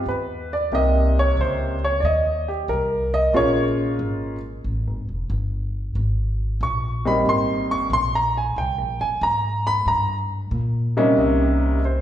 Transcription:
0.06 upright bass D#2, upright piano B4
0.53 upright piano D5
0.72 upright bass C2, upright piano C3 A#3 D#4 G4 D#5
1.19 upright piano C#5
1.37 upright bass C#2, upright piano C5
1.84 upright piano C#5
2.00 upright bass D#2, upright piano D5
2.05 upright piano D#5
2.48 upright piano G4
2.68 upright bass C2, upright piano A#4
3.14 upright piano D#5
3.33 upright bass A#1, upright piano G#3 A#3 C#4 F4 C#5
3.99 upright bass G#1
4.64 upright bass A1
4.87 upright bass G1
5.09 upright bass E1
5.30 upright bass G1
5.95 upright bass G#1
6.61 upright bass A#1, upright piano C#6
7.05 upright piano G3 A#3 C4 D#4 B5
7.25 upright bass G#1, upright piano C6
7.71 upright piano C#6
7.90 upright bass A#1, upright piano C6
8.15 upright piano A#5
8.37 upright piano G#5
8.56 upright bass C2, upright piano G5
8.78 upright bass A#1
8.99 upright bass G1, upright piano G#5
9.21 upright bass G#2, upright piano A#5
9.67 upright piano B5
9.86 upright bass G2, upright piano A#5
10.51 upright bass A#2
10.97 upright piano C3 G3 A#3 C#4 D#4
11.17 upright bass C2, upright piano D#5
11.85 upright piano C5

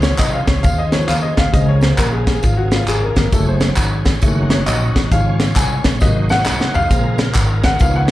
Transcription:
Already playing: upright bass C#2, tonewheel organ C#3 F3 C4 G#4, upright piano D#3 F3 C4
0.02 upright piano C#5, snare, closed hi-hat, tambourine
0.18 upright bass C2, upright piano D#5, kick, clap, closed hi-hat, tambourine
0.34 upright piano F5
0.47 upright bass C#2, upright piano C#5, kick, snare, closed hi-hat, tambourine
0.63 upright bass D#2, upright piano F5, kick, closed hi-hat, tambourine
0.78 upright piano D#5
0.92 upright piano D#3 F3 C4 C#5, snare, closed hi-hat, tambourine
1.08 upright bass D#2, upright piano F5, clap, closed hi-hat, tambourine
1.22 upright piano D#5
1.37 upright bass D2, upright piano F5, kick, snare, closed hi-hat, tambourine
1.52 upright bass C#2, upright piano C#3 G#3 C4 D#5, tonewheel organ C#3 F3 A#3 G#4, kick, closed hi-hat, tambourine
1.68 upright piano C#5
1.81 upright piano C5, snare, closed hi-hat, tambourine
1.98 upright bass A#1, upright piano A#4, kick, clap, closed hi-hat, tambourine
2.13 upright piano G#4
2.27 upright piano G#4, kick, snare, closed hi-hat, tambourine
2.43 upright bass G#1, upright piano F4, kick, closed hi-hat, tambourine
2.57 upright piano F#4
2.71 upright piano F4, snare, closed hi-hat, tambourine
2.87 upright bass G#1, upright piano G#4, clap, closed hi-hat, tambourine
3.03 upright piano A#4
3.16 upright bass G1, upright piano A#4, kick, snare, closed hi-hat, tambourine
3.32 upright bass F#1, upright piano F#3 G#3 A3 A4, tonewheel organ F#3 C#4 G4, kick, closed hi-hat, tambourine
3.38 tonewheel organ G#4
3.48 upright piano C5
3.60 snare, closed hi-hat, tambourine
3.76 upright bass G#1, kick, clap, closed hi-hat, tambourine
4.05 kick, snare, closed hi-hat, tambourine
4.21 upright bass F#1, upright piano D#3 G#3 A3, tonewheel organ F#3 C#4 D#4 G#4, kick, closed hi-hat, tambourine
4.28 tonewheel organ F#4
4.50 upright piano C#5, snare, closed hi-hat, tambourine
4.66 upright bass A#1, upright piano D#5, clap, closed hi-hat, tambourine
4.96 upright bass A1, kick, snare, closed hi-hat, tambourine
5.11 upright bass G#1, upright piano C#3 F3 G#3 F5, tonewheel organ G#3 C#4 E4 C#5, kick, closed hi-hat, tambourine
5.17 tonewheel organ F4
5.40 snare, closed hi-hat, tambourine
5.56 upright bass C2, upright piano G#5, kick, clap, closed hi-hat, tambourine
5.84 upright bass A#1, kick, snare, closed hi-hat, tambourine
6.01 upright bass G#1, upright piano C3 F#3 A#3 D#5, tonewheel organ G#3 D#4 F#4 B4, kick, snare, tambourine
6.06 tonewheel organ C5
6.29 upright piano F#5, snare, tambourine
6.46 upright bass C2, snare, clap, tambourine
6.61 snare
6.74 upright bass B1, upright piano F5, floor tom, tambourine
6.90 upright bass A#1, upright piano C#3 G#3 C4, tonewheel organ A#3 F4 G#4 A#4, kick, closed hi-hat, tambourine
7.18 snare, closed hi-hat, tambourine
7.34 upright bass G#1, kick, clap, closed hi-hat, tambourine
7.63 upright bass D#2, upright piano F#5, kick, snare, closed hi-hat, tambourine
7.79 upright bass C#2, upright piano D#3 F3 B3 F5, tonewheel organ B3 D#4 F4 C#5, kick, closed hi-hat, tambourine
7.96 upright piano F#5

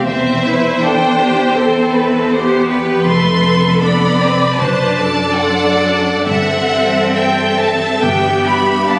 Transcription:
Already playing: harp C3 G3 C4 E4 G4
0.06 double bass section E1, harp E2, cello section E2, viola section C4 C5, violin section C5 E5
0.33 harp E3
0.43 viola section E4, violin section B4
0.57 harp E4
0.81 viola section D4, harp G4, violin section A4 G5
1.07 harp C4
1.19 violin section G4
1.31 harp E3
1.55 harp E2, viola section C4 A4, violin section C5
1.80 harp C4
1.94 violin section B4
2.06 harp E4
2.31 viola section B3 G4, harp G4, violin section C5
2.57 harp C4
2.69 viola section G4, violin section B4
2.82 harp E3
3.05 double bass section F1, cello section F2, harp F2, viola section A3 A4, violin section C6
3.32 harp C3
3.56 harp D4
3.81 viola section B3 D5, harp A4, violin section A4 B5
4.07 harp A3
4.19 viola section C4, violin section B4
4.33 harp C3
4.57 double bass section F#1, cello section F#2, harp F#2, viola section D4 B4, violin section C5 A5
4.85 harp F#3
4.97 viola section A4, violin section D5
5.12 harp D4
5.39 viola section D4, harp C5, violin section F#5
5.66 harp A3
5.95 harp F#3
6.26 double bass section G1, harp G2, cello section G2, viola section C4 A4, violin section E5 F#5
6.57 harp E3
6.86 harp C4
7.14 harp C5, violin section E5 G5
7.45 harp G3
7.59 violin section A5
7.74 harp E3
8.01 double bass section G1, timpani G2, harp G2, cello section G2, viola section B3 G4, violin section G5
8.32 harp D3
8.47 violin section B5
8.61 harp D4
8.88 harp B4, violin section F5 A5

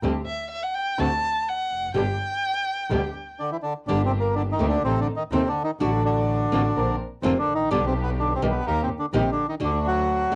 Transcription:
0.03 double bass D2, nylon-string guitar D3 G3 C4 G4, string section C4 D4 G4
0.26 violin E5
0.51 violin E5
0.63 violin F#5
0.75 violin G5
0.98 double bass D2, nylon-string guitar D3 A3 C4 F#4, string section C4 D4 F#4, violin A5
1.48 violin F#5
1.70 double bass F1
1.94 double bass G1, nylon-string guitar B2 D3 G3 B3 G4, string section B3 D4 G4, violin G5
2.90 double bass D2, nylon-string guitar B2 D3 G3 B3 G4, string section B3 D4 G4
3.39 bandoneon D3 D4
3.52 bandoneon E3 E4
3.62 bandoneon D3 D4
3.87 double bass G1, nylon-string guitar D3 G3 A#3 D4 G4, bandoneon D3 D4, string section A#3 D4 G4
4.05 bandoneon C3 C4
4.20 bandoneon A#3 A#4
4.35 bandoneon D3 D4
4.52 bandoneon D#3 D#4
4.59 double bass D2, nylon-string guitar D#3 A3 C4, string section A#3 D4 G4
4.68 bandoneon D3 D4
4.82 double bass A1, bandoneon C3 C4, string section C4 D#4 A4
5.00 bandoneon D3 D4
5.16 bandoneon D#3 D#4
5.31 double bass D#2, bandoneon C3 C4, nylon-string guitar D#3 A3 C4, string section C4 D#4 A4
5.48 bandoneon D3 D4
5.64 bandoneon D#3 D#4
5.79 double bass A1, nylon-string guitar D3 A3 D4 F#4, bandoneon D3 D4, string section D4 F#4 A4
6.05 bandoneon D3 D4
6.51 double bass A1, nylon-string guitar D3 A#3 C4 F4, string section D4 F#4 A4
6.75 double bass A#1, string section C4 D4 A#4
7.23 double bass F1, bandoneon C3 C4, nylon-string guitar D3 A#3 C4 F4, string section C4 D4 A#4
7.39 bandoneon D3 D4
7.47 double bass A1
7.55 bandoneon D#3 D#4
7.70 double bass B1, nylon-string guitar B2 D3 G3 B3 G4, bandoneon D3 D4, string section B3 D4 G4
7.86 bandoneon C3 C4
8.02 bandoneon B3 B4
8.19 bandoneon D3 D4
8.35 bandoneon C3 C4
8.42 double bass B1, nylon-string guitar D#3 G3 A#3 D#4 G4, string section B3 D4 G4
8.50 bandoneon B3 B4
8.65 double bass D#2, string section A#3 D#4 G4, bandoneon A#3 A#4
8.82 bandoneon C3 C4
8.99 bandoneon D3 D4
9.13 double bass A#1, bandoneon C3 C4, nylon-string guitar D#3 G3 A#3 D#4 G4, string section A#3 D#4 G4
9.32 bandoneon D3 D4
9.49 bandoneon D#3 D#4
9.60 double bass D2, nylon-string guitar D3 A3 D4 F#4, string section A3 D4 F#4
9.64 bandoneon D3 D4
9.87 bandoneon F#3 F#4
10.31 nylon-string guitar D3 A3 D4 F#4

